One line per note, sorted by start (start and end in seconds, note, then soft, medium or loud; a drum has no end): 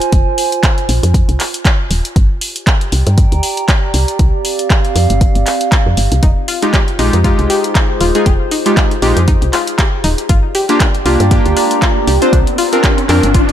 0.00 2.88 F4 medium
0.00 2.88 C5 medium
0.00 2.16 G#5 medium
0.00 closed hi-hat medium
0.12 0.24 F1 loud
0.12 kick loud
0.12 closed hi-hat medium
0.38 open hi-hat loud
0.52 closed hi-hat medium
0.63 kick loud
0.63 clap loud
0.63 closed hi-hat medium
0.78 closed hi-hat soft
0.89 1.00 A#1 medium
0.89 open hi-hat medium
1.03 1.23 F2 medium
1.03 closed hi-hat medium
1.14 kick loud
1.14 closed hi-hat medium
1.29 1.37 C2 medium
1.29 closed hi-hat soft
1.40 clap medium
1.40 open hi-hat loud
1.54 closed hi-hat medium
1.65 kick loud
1.65 clap loud
1.65 closed hi-hat medium
1.91 2.02 D#1 medium
1.91 open hi-hat medium
2.05 closed hi-hat medium
2.16 2.27 G1 loud
2.16 6.23 G4 medium
2.16 kick loud
2.16 closed hi-hat medium
2.41 open hi-hat loud
2.47 7.15 D5 medium
2.56 closed hi-hat medium
2.61 4.87 G5 medium
2.67 kick loud
2.67 clap loud
2.67 closed hi-hat medium
2.75 4.87 A#5 medium
2.81 closed hi-hat soft
2.92 3.04 C2 medium
2.92 open hi-hat medium
3.07 3.26 G2 medium
3.07 closed hi-hat soft
3.18 kick loud
3.18 closed hi-hat medium
3.32 3.41 D2 medium
3.32 closed hi-hat soft
3.43 open hi-hat loud
3.57 closed hi-hat medium
3.69 kick loud
3.69 clap loud
3.69 closed hi-hat medium
3.94 4.05 C2 medium
3.94 6.86 C4 medium
3.94 open hi-hat loud
4.07 7.08 F5 medium
4.07 closed hi-hat soft
4.19 4.31 C2 medium
4.19 kick loud
4.19 closed hi-hat medium
4.45 open hi-hat loud
4.59 closed hi-hat medium
4.70 kick loud
4.70 clap loud
4.70 closed hi-hat medium
4.85 closed hi-hat soft
4.96 5.07 F2 medium
4.96 open hi-hat medium
5.10 5.30 G1 medium
5.10 closed hi-hat soft
5.21 kick loud
5.21 closed hi-hat medium
5.35 5.44 G1 medium
5.35 closed hi-hat soft
5.46 clap medium
5.46 open hi-hat loud
5.61 closed hi-hat medium
5.72 kick loud
5.72 clap loud
5.72 closed hi-hat medium
5.86 5.95 F2 medium
5.97 6.09 G1 medium
5.97 open hi-hat medium
6.12 6.21 C2 medium
6.12 closed hi-hat soft
6.23 6.34 F1 loud
6.23 6.31 D#4 medium
6.23 11.01 F4 medium
6.23 kick loud
6.23 closed hi-hat medium
6.44 6.61 F4 medium
6.44 10.30 G#4 medium
6.44 11.01 C5 medium
6.44 open hi-hat loud
6.62 6.79 G#3 medium
6.62 6.79 D#4 medium
6.62 6.79 F4 medium
6.62 6.79 G4 loud
6.62 closed hi-hat soft
6.74 6.87 G4 medium
6.74 kick loud
6.74 clap loud
6.74 closed hi-hat medium
6.88 closed hi-hat soft
6.99 7.10 A#1 medium
6.99 7.17 G#3 medium
6.99 7.17 D#4 medium
6.99 7.08 D#4 medium
6.99 7.17 F4 medium
6.99 7.17 G4 medium
6.99 open hi-hat medium
7.13 7.33 F2 medium
7.13 closed hi-hat soft
7.24 8.11 G#3 medium
7.24 8.12 D#4 medium
7.24 7.37 F4 medium
7.24 8.12 F4 medium
7.24 8.12 G4 loud
7.24 kick loud
7.24 closed hi-hat medium
7.39 7.48 C2 medium
7.39 closed hi-hat soft
7.50 7.63 G4 medium
7.50 open hi-hat loud
7.64 closed hi-hat medium
7.75 7.84 D#4 medium
7.75 kick loud
7.75 clap loud
7.75 closed hi-hat medium
8.01 8.12 D#1 medium
8.01 8.14 F4 medium
8.01 open hi-hat medium
8.15 8.31 G#3 medium
8.15 8.31 D#4 medium
8.15 8.31 F4 medium
8.15 8.31 G#4 medium
8.15 closed hi-hat soft
8.26 8.38 F1 loud
8.26 8.39 G4 medium
8.26 kick loud
8.26 closed hi-hat medium
8.51 8.60 D#4 medium
8.51 open hi-hat loud
8.66 8.93 G#3 medium
8.66 8.93 D#4 medium
8.66 8.93 F4 medium
8.66 8.93 G4 medium
8.66 closed hi-hat medium
8.77 8.90 F4 medium
8.77 kick loud
8.77 clap loud
8.77 closed hi-hat medium
8.91 closed hi-hat soft
9.02 9.14 A#1 medium
9.02 9.21 G#3 medium
9.02 9.21 D#4 medium
9.02 9.21 F4 medium
9.02 9.15 G4 medium
9.02 9.21 G4 loud
9.02 open hi-hat medium
9.17 9.36 F2 medium
9.17 closed hi-hat soft
9.28 9.36 D#4 medium
9.28 kick loud
9.28 closed hi-hat medium
9.42 9.51 C2 medium
9.42 closed hi-hat soft
9.53 9.66 F4 medium
9.53 clap medium
9.53 open hi-hat loud
9.67 closed hi-hat medium
9.79 9.92 G4 medium
9.79 kick loud
9.79 clap loud
9.79 closed hi-hat medium
10.04 10.16 D#1 medium
10.04 10.13 D#4 medium
10.04 open hi-hat medium
10.18 closed hi-hat medium
10.29 10.41 G1 loud
10.29 10.42 F4 medium
10.29 13.52 G4 medium
10.29 kick loud
10.29 closed hi-hat medium
10.29 riser medium
10.36 13.52 D5 medium
10.46 13.00 G5 medium
10.55 10.68 G4 medium
10.55 open hi-hat medium
10.69 10.85 A#3 medium
10.69 10.85 D4 medium
10.69 10.85 F4 medium
10.69 10.86 G4 loud
10.69 closed hi-hat medium
10.79 10.89 D4 medium
10.79 13.00 A#5 medium
10.79 kick loud
10.79 clap loud
10.79 closed hi-hat medium
10.95 closed hi-hat soft
11.06 11.17 C2 medium
11.06 11.24 A#3 medium
11.06 11.24 D4 medium
11.06 11.19 F4 medium
11.06 11.24 F4 medium
11.06 11.24 G4 medium
11.06 open hi-hat medium
11.20 11.40 G2 medium
11.20 closed hi-hat medium
11.31 12.06 A#3 medium
11.31 12.06 D4 medium
11.31 12.06 F4 medium
11.31 11.44 G4 medium
11.31 12.06 G4 loud
11.31 kick loud
11.31 closed hi-hat medium
11.45 11.54 D2 medium
11.45 closed hi-hat soft
11.57 11.65 D4 medium
11.57 open hi-hat loud
11.71 closed hi-hat medium
11.82 11.95 F4 medium
11.82 kick loud
11.82 clap loud
11.82 closed hi-hat medium
12.07 12.19 C2 medium
12.07 13.52 C4 medium
12.07 12.20 G4 medium
12.07 open hi-hat medium
12.22 12.38 C4 medium
12.22 12.38 D4 medium
12.22 12.38 F4 medium
12.22 12.38 C5 medium
12.22 closed hi-hat medium
12.33 12.44 C2 loud
12.33 12.41 D4 medium
12.33 kick loud
12.33 closed hi-hat medium
12.47 closed hi-hat soft
12.58 12.71 F4 medium
12.58 open hi-hat loud
12.73 13.00 C4 medium
12.73 13.00 D4 medium
12.73 13.00 F4 medium
12.73 13.00 A#4 medium
12.73 closed hi-hat medium
12.84 12.97 G4 medium
12.84 kick loud
12.84 clap loud
12.84 closed hi-hat medium
12.98 closed hi-hat soft
13.09 13.21 F2 medium
13.09 13.27 C4 medium
13.09 13.27 D4 medium
13.09 13.18 D4 medium
13.09 13.28 F4 medium
13.09 13.28 A#4 loud
13.09 clap medium
13.09 open hi-hat medium
13.23 13.50 G1 medium
13.23 closed hi-hat medium
13.34 13.48 F4 medium
13.34 kick loud
13.34 closed hi-hat medium
13.49 13.52 F2 medium
13.49 closed hi-hat soft